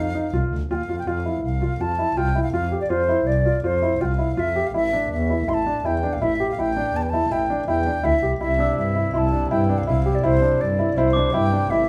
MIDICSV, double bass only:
0, 0, Header, 1, 2, 480
1, 0, Start_track
1, 0, Key_signature, -1, "major"
1, 0, Tempo, 366748
1, 1399, Time_signature, 5, 2, 24, 8
1, 15559, End_track
2, 0, Start_track
2, 0, Title_t, "Double bass"
2, 0, Program_c, 0, 43
2, 0, Note_on_c, 0, 41, 72
2, 152, Note_off_c, 0, 41, 0
2, 422, Note_on_c, 0, 36, 78
2, 628, Note_off_c, 0, 36, 0
2, 673, Note_on_c, 0, 38, 65
2, 892, Note_off_c, 0, 38, 0
2, 910, Note_on_c, 0, 39, 62
2, 1131, Note_off_c, 0, 39, 0
2, 1152, Note_on_c, 0, 41, 60
2, 1372, Note_off_c, 0, 41, 0
2, 1382, Note_on_c, 0, 41, 77
2, 1788, Note_off_c, 0, 41, 0
2, 1869, Note_on_c, 0, 36, 82
2, 2272, Note_off_c, 0, 36, 0
2, 2345, Note_on_c, 0, 41, 70
2, 2750, Note_off_c, 0, 41, 0
2, 2821, Note_on_c, 0, 36, 82
2, 3228, Note_off_c, 0, 36, 0
2, 3302, Note_on_c, 0, 41, 78
2, 3709, Note_off_c, 0, 41, 0
2, 3783, Note_on_c, 0, 41, 81
2, 4189, Note_off_c, 0, 41, 0
2, 4267, Note_on_c, 0, 36, 80
2, 4672, Note_off_c, 0, 36, 0
2, 4750, Note_on_c, 0, 41, 75
2, 5154, Note_off_c, 0, 41, 0
2, 5238, Note_on_c, 0, 36, 80
2, 5639, Note_off_c, 0, 36, 0
2, 5721, Note_on_c, 0, 41, 69
2, 6121, Note_off_c, 0, 41, 0
2, 6192, Note_on_c, 0, 33, 81
2, 6596, Note_off_c, 0, 33, 0
2, 6681, Note_on_c, 0, 40, 91
2, 7081, Note_off_c, 0, 40, 0
2, 7166, Note_on_c, 0, 33, 82
2, 7564, Note_off_c, 0, 33, 0
2, 7641, Note_on_c, 0, 40, 89
2, 8041, Note_off_c, 0, 40, 0
2, 8129, Note_on_c, 0, 33, 75
2, 8526, Note_off_c, 0, 33, 0
2, 8607, Note_on_c, 0, 33, 85
2, 9005, Note_off_c, 0, 33, 0
2, 9082, Note_on_c, 0, 40, 83
2, 9482, Note_off_c, 0, 40, 0
2, 9563, Note_on_c, 0, 33, 75
2, 9963, Note_off_c, 0, 33, 0
2, 10048, Note_on_c, 0, 40, 95
2, 10445, Note_off_c, 0, 40, 0
2, 10517, Note_on_c, 0, 38, 73
2, 10738, Note_off_c, 0, 38, 0
2, 10759, Note_on_c, 0, 36, 63
2, 10978, Note_off_c, 0, 36, 0
2, 10996, Note_on_c, 0, 36, 85
2, 11398, Note_off_c, 0, 36, 0
2, 11476, Note_on_c, 0, 43, 86
2, 11878, Note_off_c, 0, 43, 0
2, 11957, Note_on_c, 0, 36, 78
2, 12358, Note_off_c, 0, 36, 0
2, 12439, Note_on_c, 0, 43, 93
2, 12839, Note_off_c, 0, 43, 0
2, 12917, Note_on_c, 0, 36, 81
2, 13317, Note_off_c, 0, 36, 0
2, 13396, Note_on_c, 0, 36, 80
2, 13796, Note_off_c, 0, 36, 0
2, 13869, Note_on_c, 0, 43, 80
2, 14271, Note_off_c, 0, 43, 0
2, 14347, Note_on_c, 0, 36, 85
2, 14749, Note_off_c, 0, 36, 0
2, 14833, Note_on_c, 0, 43, 94
2, 15232, Note_off_c, 0, 43, 0
2, 15311, Note_on_c, 0, 33, 79
2, 15559, Note_off_c, 0, 33, 0
2, 15559, End_track
0, 0, End_of_file